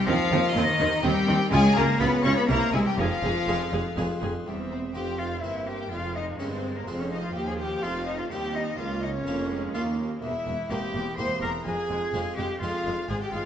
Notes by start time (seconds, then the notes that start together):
0.06 D#2 D#3 F3 C4 F4 F5
0.31 D#2 D#3 C4
0.55 D#2 D#3 C4 D#4 D#5
0.79 D#2 D#3 C4
1.03 D#2 D#3 G3 C4 D#4 G4 G5
1.27 D#2 D#3 C4
1.51 C#2 C#3 G#3 C#4 F4 G#4 G#5
1.75 C#2 C#3 A#3 F4 A#4 A#5
1.99 C#2 C#3 B3 F4 B4 B5
2.23 C#2 C#3 C#4 F4 C#5 C#6
2.36 B3 B4 B5
2.48 C2 C3 A#3 C4 E4 A#4 A#5
2.73 C2 C3 G#3 E4 G#4 G#5
2.86 G3 G4 G5
2.98 F1 F2 F3 F4 G#4 F5
3.23 F1 F2 G#4
3.48 F1 F2 G#3 C4 F4 G#4
3.72 F1 F2 G#4
3.97 F1 F2 G#3 C4 F4 G#4
4.22 F1 F2 G#4
4.46 E1 E2 G3 C4 G4 E5
4.70 C4 C5
4.94 F1 F2 C4 G4 C5 G5
5.19 F4 F5
5.42 G1 G2 A#3 C4 E4 C5 E5
5.67 G4 G5
5.91 F1 F2 G#3 F4 F5
6.15 D#4 D#5
6.39 G1 G2 G#3 C4 C#4 A#4 C#5
6.51 C4 C5
6.76 A#3 A#4
6.87 F1 F2 F3 G#3 C4 C5
7.00 C#4 C#5
7.12 D#4 D#5
7.23 F4 F5
7.35 D#2 G4 C5 G5
7.48 G#4 G#5
7.59 G4 G5
7.83 F1 F2 C4 D#4 F4 C5 F5
8.06 D#4 D#5
8.19 F4 F5
8.30 D#2 G3 C4 D#4 G4 G5
8.55 D#4 D#5
8.79 C#2 A#3 F4 C#5 F5
9.03 D#4 D#5
9.14 C#4 C#5
9.26 F1 F2 A#3 C#4 F4 A#4
9.51 G#3
9.74 D#2 A#3 C#4 F4 A#4 F5
10.22 E1 E2 A#3 E4 C5 E5
10.46 E1 E2 A#3 C5
10.70 E1 E2 A#3 C4 G4 C5 G5
10.94 E1 E2 A#3 C5
11.18 E1 E2 A#3 C4 G4 C5 C6
11.42 E1 E2 A#3 A#4 C5 A#5
11.65 F1 F2 G#3 G#4 C5 G#5
11.90 F1 F2 G#3 C5
12.13 F1 F2 G#3 C4 F4 C5
12.37 F1 F2 G#3 G4 C5 G5
12.61 F1 F2 G#3 C4 F4 C5 F5
12.85 F1 F2 G#3 C5
13.09 G#1 G#2 G#3 G#4 C5 G#5
13.21 G4 G5
13.33 G#1 G#2 G#3 F4 C5 F5